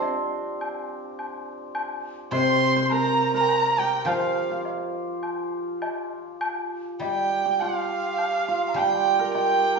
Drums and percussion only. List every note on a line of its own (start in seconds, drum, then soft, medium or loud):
0.02 low woodblock soft
0.61 high woodblock soft
1.19 high woodblock soft
1.75 high woodblock medium
2.32 low woodblock soft
2.90 high woodblock soft
3.49 high woodblock soft
4.06 high woodblock medium
4.65 low woodblock soft
5.23 high woodblock soft
5.82 high woodblock soft
5.82 low woodblock soft
6.41 high woodblock medium
7.01 low woodblock soft
7.60 high woodblock soft
8.18 high woodblock soft
8.76 high woodblock medium
9.35 low woodblock soft